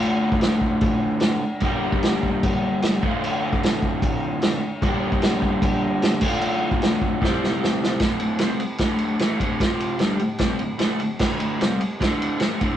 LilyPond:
<<
  \new Staff \with { instrumentName = "Overdriven electric guitar" } { \clef bass \time 4/4 \key d \minor \tempo 4 = 150 <d, a, d a f'>2.~ <d, a, d a f'>8 r8 | <g, d g bes d' g'>2.~ <g, d g bes d' g'>8 <d, a, d a f'>8~ | <d, a, d a f'>2.~ <d, a, d a f'>8 r8 | <g, d g bes d' g'>2.~ <g, d g bes d' g'>8 <d, a, d a f'>8~ |
<d, a, d a f'>2 <c g c' e' g' c''>2 | <d, a, d>4 <c g c'>8 r8 <d, a, d>4 <a, e a>8 <d, a, d>8 | <f, c f>4 <g, d g>8 <d, a,>8 <c g c'>8 <d, a,>8 <d a d'>8 <d, a,>8 | <d, a, d>4 <c g c'>8 r8 <d, a, d>4 <a, e a>8 <d, a, d>8 | }
  \new DrumStaff \with { instrumentName = "Drums" } \drummode { \time 4/4 cymc8. bd16 <cymc sn>8 bd8 <cymc bd>4 <cymc sn>4 | <cymc bd>8. bd16 <cymc sn>8 bd8 <cymc bd>4 <cymc sn>8 bd8 | cymc8. bd16 <cymc sn>8 bd8 <cymc bd>4 <cymc sn>4 | <cymc bd>8. bd16 <cymc sn>8 bd8 <cymc bd>4 <cymc sn>8 <cymc bd>8 |
cymc8. bd16 <cymc sn>8 bd8 <bd sn>8 sn8 sn8 sn8 | <bd cymr sn>8 cymr8 <cymr sn>8 cymr8 <bd cymr sn>8 cymr8 <cymr sn>8 <bd cymr>8 | <bd cymr sn>8 cymr8 <cymr sn>8 cymr8 <bd cymr sn>8 cymr8 <cymr sn>8 cymr8 | <cymc bd sn>8 cymr8 <cymr sn>8 cymr8 <bd cymr sn>8 cymr8 <cymr sn>8 <bd cymr>8 | }
>>